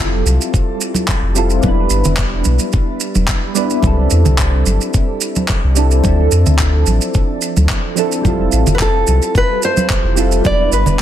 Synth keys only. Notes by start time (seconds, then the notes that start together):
Already playing: G3 C4 E4 F4 A4
1.35 G3 C4 E4 F4 A4
1.61 G3 B3 D4
1.66 E4 B4
3.55 G3 B3 D4 E4 B4
3.80 G3 C4 D4
3.85 E4 A4
5.75 G3 C4 D4 E4 A4
6.01 F3 C4 D4
6.07 E4 A4
7.95 F3 C4 D4 E4 A4
8.21 G3 C4 E4
8.27 F4 A4
10.15 G3 C4 E4 F4 A4
10.41 G3 B3 D4
10.46 E4 B4